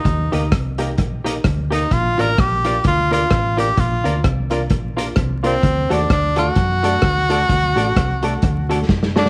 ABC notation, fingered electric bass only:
X:1
M:4/4
L:1/8
Q:"Swing" 1/4=129
K:Bb
V:1 name="Fingered electric bass" clef=bass
E,, D,, C,,2 B,,,2 D,,2 | B,,, A,,, B,,,2 D,,2 A,,,2 | B,,, D,, C,,2 B,,,2 C,,2 | D,, E,, D,,2 ^F,,2 D,,2 |
D,, A,,, C,,2 D,,2 ^F,,,2 |]